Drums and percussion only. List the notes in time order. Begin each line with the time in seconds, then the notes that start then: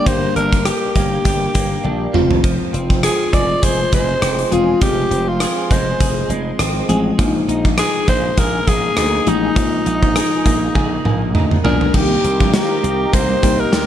0.06 kick, closed hi-hat
0.36 closed hi-hat
0.52 kick, closed hi-hat
0.65 cross-stick, closed hi-hat
0.95 kick, closed hi-hat
1.25 kick, closed hi-hat
1.55 kick, closed hi-hat
1.85 high tom
2.14 mid tom
2.31 floor tom
2.44 kick, closed hi-hat
2.74 closed hi-hat
2.90 kick
3.03 cross-stick, closed hi-hat
3.33 kick, closed hi-hat
3.63 kick, closed hi-hat
3.92 kick, closed hi-hat
4.22 cross-stick, closed hi-hat
4.39 closed hi-hat
4.52 closed hi-hat
4.81 kick, closed hi-hat
5.11 closed hi-hat
5.40 cross-stick, closed hi-hat
5.71 kick, closed hi-hat
6.00 kick, closed hi-hat
6.30 closed hi-hat
6.59 cross-stick, closed hi-hat
6.89 closed hi-hat
7.19 kick, closed hi-hat
7.49 closed hi-hat
7.65 kick
7.78 cross-stick, closed hi-hat
8.08 kick, closed hi-hat
8.37 kick, closed hi-hat
8.68 kick, closed hi-hat
8.97 cross-stick, closed hi-hat
9.27 closed hi-hat
9.56 kick, closed hi-hat
9.86 closed hi-hat
10.03 kick
10.16 cross-stick, closed hi-hat
10.46 kick, closed hi-hat
10.75 kick, high tom
11.05 mid tom
11.35 mid tom
11.51 mid tom
11.65 floor tom
11.81 floor tom
11.94 kick, crash
12.24 closed hi-hat
12.40 kick
12.54 snare, closed hi-hat
12.84 closed hi-hat
13.13 kick, closed hi-hat
13.43 kick, closed hi-hat
13.73 snare, closed hi-hat